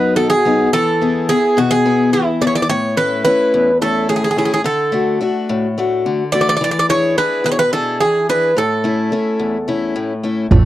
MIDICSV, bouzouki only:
0, 0, Header, 1, 2, 480
1, 0, Start_track
1, 0, Key_signature, 3, "major"
1, 0, Tempo, 559180
1, 621, Time_signature, 7, 3, 24, 8
1, 9143, End_track
2, 0, Start_track
2, 0, Title_t, "Bouzouki"
2, 0, Program_c, 0, 25
2, 0, Note_on_c, 0, 71, 82
2, 115, Note_off_c, 0, 71, 0
2, 139, Note_on_c, 0, 69, 76
2, 251, Note_off_c, 0, 69, 0
2, 255, Note_on_c, 0, 68, 81
2, 625, Note_off_c, 0, 68, 0
2, 628, Note_on_c, 0, 69, 87
2, 1104, Note_off_c, 0, 69, 0
2, 1107, Note_on_c, 0, 68, 84
2, 1353, Note_off_c, 0, 68, 0
2, 1356, Note_on_c, 0, 66, 70
2, 1462, Note_off_c, 0, 66, 0
2, 1465, Note_on_c, 0, 68, 80
2, 1800, Note_off_c, 0, 68, 0
2, 1829, Note_on_c, 0, 64, 63
2, 2074, Note_on_c, 0, 74, 76
2, 2075, Note_off_c, 0, 64, 0
2, 2117, Note_off_c, 0, 74, 0
2, 2120, Note_on_c, 0, 73, 58
2, 2183, Note_off_c, 0, 73, 0
2, 2193, Note_on_c, 0, 74, 83
2, 2242, Note_off_c, 0, 74, 0
2, 2252, Note_on_c, 0, 74, 63
2, 2309, Note_off_c, 0, 74, 0
2, 2313, Note_on_c, 0, 73, 85
2, 2534, Note_off_c, 0, 73, 0
2, 2552, Note_on_c, 0, 71, 76
2, 2773, Note_off_c, 0, 71, 0
2, 2786, Note_on_c, 0, 71, 84
2, 3234, Note_off_c, 0, 71, 0
2, 3278, Note_on_c, 0, 69, 74
2, 3497, Note_off_c, 0, 69, 0
2, 3512, Note_on_c, 0, 68, 69
2, 3561, Note_off_c, 0, 68, 0
2, 3571, Note_on_c, 0, 68, 51
2, 3632, Note_off_c, 0, 68, 0
2, 3642, Note_on_c, 0, 68, 59
2, 3688, Note_off_c, 0, 68, 0
2, 3698, Note_on_c, 0, 68, 52
2, 3753, Note_off_c, 0, 68, 0
2, 3763, Note_on_c, 0, 68, 57
2, 3813, Note_off_c, 0, 68, 0
2, 3823, Note_on_c, 0, 68, 53
2, 3884, Note_off_c, 0, 68, 0
2, 3894, Note_on_c, 0, 68, 61
2, 3956, Note_off_c, 0, 68, 0
2, 3996, Note_on_c, 0, 69, 70
2, 4439, Note_off_c, 0, 69, 0
2, 5427, Note_on_c, 0, 74, 85
2, 5488, Note_off_c, 0, 74, 0
2, 5503, Note_on_c, 0, 74, 64
2, 5559, Note_off_c, 0, 74, 0
2, 5572, Note_on_c, 0, 74, 82
2, 5626, Note_off_c, 0, 74, 0
2, 5636, Note_on_c, 0, 74, 69
2, 5690, Note_off_c, 0, 74, 0
2, 5699, Note_on_c, 0, 74, 79
2, 5754, Note_off_c, 0, 74, 0
2, 5763, Note_on_c, 0, 74, 66
2, 5818, Note_off_c, 0, 74, 0
2, 5830, Note_on_c, 0, 74, 77
2, 5884, Note_off_c, 0, 74, 0
2, 5922, Note_on_c, 0, 73, 90
2, 6160, Note_off_c, 0, 73, 0
2, 6163, Note_on_c, 0, 71, 83
2, 6391, Note_off_c, 0, 71, 0
2, 6402, Note_on_c, 0, 71, 84
2, 6448, Note_off_c, 0, 71, 0
2, 6452, Note_on_c, 0, 73, 71
2, 6509, Note_off_c, 0, 73, 0
2, 6515, Note_on_c, 0, 71, 84
2, 6630, Note_off_c, 0, 71, 0
2, 6633, Note_on_c, 0, 69, 76
2, 6853, Note_off_c, 0, 69, 0
2, 6871, Note_on_c, 0, 68, 73
2, 7091, Note_off_c, 0, 68, 0
2, 7121, Note_on_c, 0, 71, 80
2, 7359, Note_off_c, 0, 71, 0
2, 7365, Note_on_c, 0, 69, 64
2, 8754, Note_off_c, 0, 69, 0
2, 9143, End_track
0, 0, End_of_file